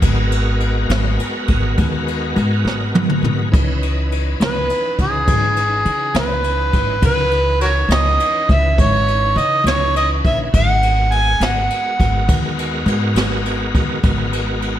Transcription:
0.02 0.86 G#1 medium
0.02 3.49 G#3 medium
0.02 3.49 B3 medium
0.02 3.49 F#4 medium
0.02 3.49 A#4 medium
0.02 kick loud
0.02 ride medium
0.32 ride medium
0.60 ride medium
0.90 1.17 G#1 medium
0.90 snare loud
0.90 ride medium
1.20 ride medium
1.48 1.75 G#1 medium
1.48 kick medium
1.48 ride medium
1.78 2.32 D#2 medium
1.78 kick loud
1.78 ride medium
2.08 ride medium
2.36 2.63 G#2 loud
2.36 ride medium
2.65 3.19 G#1 medium
2.65 snare medium
2.95 high tom medium
3.10 mid tom medium
3.23 3.50 G#2 medium
3.23 mid tom medium
3.52 4.37 C#2 medium
3.52 6.99 E3 medium
3.52 6.99 C#4 medium
3.52 6.99 D#4 medium
3.52 6.99 B4 medium
3.52 kick loud
3.52 ride medium
3.83 ride medium
4.12 ride medium
4.40 4.67 C#2 medium
4.40 4.96 B4 medium
4.40 snare loud
4.40 ride medium
4.70 ride medium
4.99 5.26 C#2 medium
4.99 6.13 G#4 medium
4.99 kick medium
4.99 ride medium
5.28 5.82 G#1 medium
5.28 kick loud
5.28 ride medium
5.56 ride medium
5.85 6.13 C#3 medium
5.85 ride medium
6.14 6.69 C#2 medium
6.14 7.00 B4 medium
6.14 snare loud
6.14 ride medium
6.44 ride medium
6.73 7.00 G#1 medium
6.73 kick medium
6.73 ride medium
7.02 7.86 C#2 medium
7.02 10.49 E3 medium
7.02 10.49 C#4 medium
7.02 10.49 D#4 medium
7.02 10.49 B4 medium
7.02 7.58 B4 medium
7.02 kick loud
7.02 ride medium
7.31 ride medium
7.61 7.69 F#4 medium
7.61 7.69 A#4 medium
7.61 7.93 C#5 medium
7.61 ride medium
7.89 8.16 C#2 medium
7.89 8.49 D#5 medium
7.89 snare loud
7.89 ride medium
8.20 ride medium
8.49 8.76 C#2 medium
8.49 8.77 E5 medium
8.49 kick medium
8.49 snare soft
8.49 ride medium
8.78 9.33 G#1 medium
8.78 9.39 C#5 medium
8.78 kick loud
8.78 ride medium
9.08 ride soft
9.36 9.63 C#3 medium
9.36 9.66 D#5 loud
9.36 ride medium
9.64 10.19 C#2 medium
9.64 9.93 C#5 medium
9.64 snare loud
9.64 ride medium
9.96 10.09 D#5 medium
9.96 ride medium
10.25 10.51 A#1 medium
10.25 10.39 E5 medium
10.25 kick medium
10.25 ride medium
10.52 11.37 G#1 medium
10.52 14.00 G#3 medium
10.52 14.00 B3 medium
10.52 14.00 F#4 medium
10.52 14.00 A#4 medium
10.52 11.15 F#5 loud
10.52 kick loud
10.52 ride medium
10.83 ride medium
11.12 11.42 G#5 loud
11.12 ride medium
11.40 11.67 G#1 medium
11.40 snare loud
11.40 ride medium
11.45 12.56 F#5 medium
11.70 ride medium
12.00 12.26 G#1 medium
12.00 kick medium
12.00 snare soft
12.00 ride medium
12.28 12.83 D#2 medium
12.28 kick loud
12.28 ride medium
12.59 ride medium
12.86 13.13 G#2 loud
12.86 ride medium
13.15 13.70 G#1 medium
13.15 snare medium
13.15 ride medium
13.45 ride medium
13.75 14.01 D#2 medium
13.75 kick medium
13.75 ride medium
14.03 14.79 G#1 medium
14.03 14.79 G#3 medium
14.03 14.79 B3 medium
14.03 14.79 F#4 medium
14.03 14.79 A#4 medium
14.03 kick loud
14.03 ride medium
14.33 ride medium
14.62 ride soft

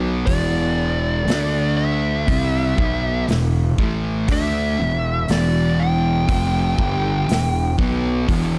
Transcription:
0.00 0.23 B1 medium
0.00 0.26 B2 medium
0.00 0.26 F#3 medium
0.00 0.26 B3 medium
0.26 1.23 E1 medium
0.26 1.26 E2 medium
0.26 1.26 B2 medium
0.26 1.26 E3 loud
0.26 1.73 D5 medium
0.26 kick loud
0.26 open hi-hat medium
1.27 2.24 D2 loud
1.27 2.27 D3 medium
1.27 2.28 A3 medium
1.27 2.28 D4 loud
1.27 snare loud
1.27 open hi-hat medium
1.77 3.24 E5 loud
2.28 2.75 C2 medium
2.28 2.77 C3 medium
2.28 2.77 G3 medium
2.28 2.78 C4 loud
2.28 kick loud
2.28 open hi-hat medium
2.78 3.25 B1 medium
2.78 3.27 B2 medium
2.78 3.27 F#3 medium
2.78 3.28 B3 loud
2.78 kick loud
3.28 3.75 E1 medium
3.28 3.69 E2 medium
3.28 3.70 B2 medium
3.28 snare loud
3.28 open hi-hat medium
3.78 4.25 A1 medium
3.78 4.28 A2 medium
3.78 4.28 E3 loud
3.78 4.28 A3 medium
3.78 kick loud
4.28 4.75 D2 loud
4.28 4.78 D3 medium
4.28 4.78 A3 loud
4.28 4.79 D4 loud
4.28 5.30 E5 medium
4.28 kick loud
4.28 open hi-hat medium
4.79 5.26 E1 medium
4.79 5.19 E2 medium
4.79 5.19 B2 medium
5.28 6.26 E1 loud
5.28 6.28 E2 loud
5.28 6.28 B2 medium
5.28 6.28 E3 loud
5.28 5.82 D5 medium
5.28 snare loud
5.28 open hi-hat medium
5.79 7.76 G5 loud
6.28 6.76 F1 medium
6.28 6.77 F2 medium
6.28 6.78 C3 loud
6.28 6.78 F3 loud
6.28 kick loud
6.28 open hi-hat medium
6.77 7.25 G1 medium
6.77 7.27 G2 medium
6.77 7.27 D3 loud
6.77 7.27 G3 loud
6.77 kick loud
7.28 7.76 E1 medium
7.28 7.69 E2 medium
7.28 7.69 B2 medium
7.28 snare loud
7.28 open hi-hat medium
7.78 8.25 B1 loud
7.78 8.26 B2 medium
7.78 8.28 F#3 medium
7.78 8.28 B3 loud
7.78 kick loud
8.28 8.59 E1 loud
8.28 8.59 E2 loud
8.28 8.59 B2 loud
8.28 8.59 E3 loud
8.28 kick loud
8.28 open hi-hat medium

